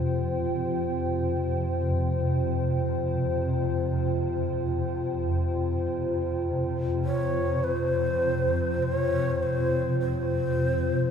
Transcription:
Already playing: synth drone F2 C3, analog synth pad F4 C5 G5
7.05 shakuhachi C#5
7.64 shakuhachi C5
8.83 shakuhachi C5
8.95 shakuhachi C#5
9.43 shakuhachi C5
10.00 shakuhachi C5

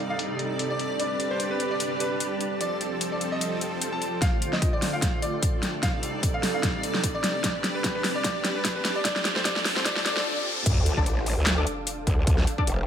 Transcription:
Already playing: supersaw synth C3 G3 D#4, ambient pad C4 G4 D5
0.10 grand piano F5
0.19 closed hi-hat
0.39 closed hi-hat
0.59 closed hi-hat
0.70 grand piano D5
0.79 closed hi-hat
1.00 supersaw synth G3 D4 B4, grand piano D5, closed hi-hat
1.16 ambient pad A5, closed hi-hat
1.31 grand piano C5
1.40 closed hi-hat
1.51 grand piano B4
1.60 closed hi-hat
1.71 grand piano D5
1.80 closed hi-hat
2.00 grand piano B4, closed hi-hat
2.20 closed hi-hat
2.41 closed hi-hat
2.61 supersaw synth F3 C4 A4, ambient pad F4, grand piano D5, closed hi-hat
2.79 ambient pad C5, closed hi-hat
3.00 ambient pad G5, closed hi-hat
3.12 grand piano D5
3.21 closed hi-hat
3.32 grand piano D#5
3.41 closed hi-hat
3.61 closed hi-hat
3.81 closed hi-hat
3.92 grand piano A5
4.02 closed hi-hat
4.22 grand piano F5, kick, snare, closed hi-hat, riser
4.35 ambient pad D5
4.41 ambient pad A4, closed hi-hat
4.53 grand piano D#5, snare
4.62 kick, closed hi-hat
4.73 grand piano D5
4.82 snare, open hi-hat
4.93 grand piano F5
5.02 kick, snare, closed hi-hat
5.22 grand piano D5, closed hi-hat
5.43 kick, closed hi-hat
5.63 snare, closed hi-hat
5.83 supersaw synth C3 G3 D#4, ambient pad C4, grand piano F5, kick, snare, closed hi-hat
6.03 closed hi-hat
6.11 ambient pad G4
6.23 kick, closed hi-hat
6.34 grand piano F5
6.43 snare, open hi-hat
6.54 grand piano F5
6.63 kick, snare, closed hi-hat
6.83 closed hi-hat
6.94 snare
7.04 kick, closed hi-hat
7.15 grand piano D5
7.24 snare, closed hi-hat
7.44 supersaw synth D4 B4, grand piano D5, kick, snare, closed hi-hat
7.57 ambient pad A5
7.64 snare, closed hi-hat
7.75 grand piano B4
7.84 kick, snare, closed hi-hat
7.95 grand piano B4
8.04 snare, open hi-hat
8.15 grand piano D5
8.24 grand piano D5, kick, snare, closed hi-hat
8.45 snare, closed hi-hat
8.55 grand piano B4
8.65 kick, snare, closed hi-hat
8.76 grand piano B4
8.85 snare, closed hi-hat
8.96 grand piano D5
9.05 supersaw synth F3 A4, grand piano D5, kick, snare, closed hi-hat
9.16 snare
9.25 snare, closed hi-hat
9.36 grand piano C5, snare
9.45 grand piano D5, kick, snare, closed hi-hat
9.56 snare
9.65 snare, open hi-hat
9.76 grand piano C5, snare
9.85 grand piano D5, kick, snare, closed hi-hat, swell
9.96 snare
10.06 grand piano D5, snare, closed hi-hat
10.17 snare
10.66 wobble bass D2, supersaw synth D4, kick, closed hi-hat, crash, sub drop
10.86 closed hi-hat
10.97 wobble bass A1, synth stab D4 A4 D5, kick
11.06 closed hi-hat
11.26 open hi-hat
11.37 wobble bass D2
11.47 snare, clap, closed hi-hat
11.58 synth stab D4 A4 D5
11.67 closed hi-hat
11.87 closed hi-hat
12.07 wobble bass D2, kick, closed hi-hat
12.27 kick, closed hi-hat
12.38 snare
12.47 closed hi-hat
12.58 synth stab D4 A4 D5, kick
12.67 wobble bass F1, closed hi-hat

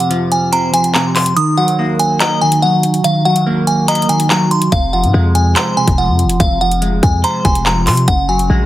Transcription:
Already playing: clean electric guitar F2 C3
0.00 closed hi-hat
0.10 clean electric guitar F3, closed hi-hat
0.32 synth bell G#5, closed hi-hat
0.52 clean electric guitar C4, synth bell A#5, closed hi-hat
0.73 clean electric guitar F2, synth bell G#5, closed hi-hat
0.84 closed hi-hat
0.95 clean electric guitar C3, synth bell A#5, clap
1.16 synth bell C6, clap, open hi-hat
1.26 closed hi-hat
1.36 clean electric guitar D#3, synth bell D#6, closed hi-hat
1.57 clean electric guitar F#3, synth bell F#5
1.68 closed hi-hat
1.79 clean electric guitar A#3
1.99 synth bell G#5, closed hi-hat
2.20 clean electric guitar D#5, synth bell A#5, clap, closed hi-hat
2.41 clean electric guitar D#3, synth bell G#5
2.52 closed hi-hat
2.62 clean electric guitar F#3, synth bell F#5
2.83 closed hi-hat
2.94 closed hi-hat
3.04 clean electric guitar D#3, synth bell F5, closed hi-hat
3.25 clean electric guitar F#3, synth bell F#5
3.36 closed hi-hat
3.46 clean electric guitar A#3
3.67 synth bell G#5, closed hi-hat
3.88 clean electric guitar D#5, synth bell A#5, closed hi-hat
3.95 closed hi-hat
4.02 closed hi-hat
4.09 clean electric guitar D#3, synth bell G#5, closed hi-hat
4.20 closed hi-hat
4.30 clean electric guitar F#3, synth bell A#5, clap
4.51 synth bell C6, closed hi-hat
4.62 closed hi-hat
4.72 808-style bass F1, clean electric guitar C3, synth bell F5, kick, closed hi-hat
4.93 clean electric guitar F3, synth bell F#5
5.04 808-style bass G#2, closed hi-hat
5.13 808-style bass F2, clean electric guitar G#3
5.35 synth bell G#5, closed hi-hat
5.56 clean electric guitar C5, synth bell A#5, clap, closed hi-hat
5.77 clean electric guitar C3, synth bell G#5
5.88 808-style bass F1, kick, closed hi-hat
5.98 clean electric guitar F3, synth bell F#5
6.08 808-style bass F2
6.19 closed hi-hat
6.24 808-style bass F1
6.29 closed hi-hat
6.40 808-style bass F1, clean electric guitar C3, synth bell F5, kick, closed hi-hat
6.61 clean electric guitar F3, synth bell F#5
6.71 closed hi-hat
6.82 clean electric guitar G#3, closed hi-hat
7.03 808-style bass F2, synth bell G#5, kick, closed hi-hat
7.24 clean electric guitar C5, synth bell A#5, closed hi-hat
7.45 808-style bass F1, clean electric guitar C3, synth bell G#5, kick, closed hi-hat
7.55 closed hi-hat
7.66 clean electric guitar F3, synth bell A#5, clap
7.87 808-style bass C3, synth bell C6, clap, open hi-hat
7.97 closed hi-hat
8.08 808-style bass F#1, clean electric guitar C#3, synth bell F#5, kick, closed hi-hat
8.28 clean electric guitar F#3, synth bell G#5
8.39 closed hi-hat
8.50 808-style bass A#1, clean electric guitar G#3

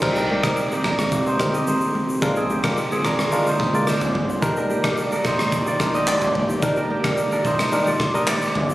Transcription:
Already playing: kora D4 A#4 C5
0.01 sub bass C2, analog synth pad D#3 A#3 C4 G4, tine electric piano G3 C4 D#4 A#4, kick, crash, low conga
0.16 kora D4 A#4, shaker
0.29 kora A#3 G4, high conga
0.43 tine electric piano G3 C4 D#4 A#4, kick, cross-stick, high conga, shaker
0.57 shaker
0.72 kora A#3 G4, shaker
0.84 sub bass A#1, kora D4 A#4, kick, cross-stick, low conga
0.99 cross-stick, high conga, shaker
1.12 kick, shaker
1.26 kora D#4 C5, shaker
1.39 sub bass G1, tine electric piano G3 C4 D#4 A#4, kick, cross-stick, high conga, shaker
1.54 kora G4 D#5, shaker
1.67 kora D#4 C5, high conga, shaker
1.81 shaker
1.95 high conga, low conga
2.09 shaker
2.21 sub bass A#1, analog synth pad D3 G#3 F4, tine electric piano G#3 D4 F4 A#4, kick, low conga, shaker
2.36 kora C4 G#4, shaker
2.49 kora A#3 G4, high conga, shaker
2.64 tine electric piano G#3 D4 F4 A#4, kick, cross-stick, high conga, shaker
2.77 shaker
2.92 kora C4 G#4, shaker
3.05 sub bass G#1, kora D4 A#4, kick, cross-stick, low conga, shaker
3.19 cross-stick, high conga, shaker
3.32 tine electric piano G#3 D4 F4 A#4, shaker
3.46 kora D#4 C5, shaker
3.60 sub bass F1, kick, high conga
3.74 tine electric piano G#3 D4 F4 A#4, kora F4 D5, shaker
3.87 kora F4 C5, cross-stick, high conga, shaker
4.01 mid tom, shaker
4.15 mid tom, high conga, low conga
4.30 shaker
4.42 sub bass D#1, analog synth pad D#3 G4 D5, tine electric piano G3 D4 D#4 A#4, kick, low conga, shaker
4.56 kora D4 A#4, shaker
4.70 kora A#3 G4, high conga, shaker
4.84 tine electric piano G3 D4 D#4 A#4, kick, cross-stick, high conga, shaker
4.97 shaker
5.12 kora D4 A#4, shaker
5.25 sub bass D1, kora D#4 C5, kick, cross-stick, low conga, shaker
5.39 cross-stick, high conga, shaker
5.52 kick, shaker
5.67 kora F4 D5, shaker
5.80 sub bass A#1, tine electric piano G3 D4 D#4 A#4, kick, cross-stick, high conga, shaker
5.95 kora G4 D#5, shaker
6.07 kora G4 D5, clap, high conga, shaker
6.21 mid tom, shaker
6.35 mid tom, high conga, low conga
6.50 shaker
6.62 sub bass D#1, tine electric piano G3 D4 D#4 A#4, kick, low conga, shaker
6.76 kora D4 A#4, shaker
6.90 kora A#3 G4, high conga
7.04 tine electric piano G3 D4 D#4 A#4, kick, cross-stick, high conga, shaker
7.17 shaker
7.32 kora D4 A#4, shaker
7.45 sub bass D#1, kora D#4 C5, kick, low conga, shaker
7.59 cross-stick, high conga, shaker
7.72 tine electric piano G3 D4 D#4 A#4, shaker
7.87 sub bass D1, kora F4 D5, shaker
8.00 kick, cross-stick, high conga
8.14 sub bass D1, tine electric piano G3 D4 D#4 A#4, kora G4 D#5, shaker
8.27 sub bass D#1, kora G4 D5, cross-stick, clap, high conga, shaker
8.41 shaker
8.55 sub bass G1, mid tom, high conga, low conga
8.70 shaker

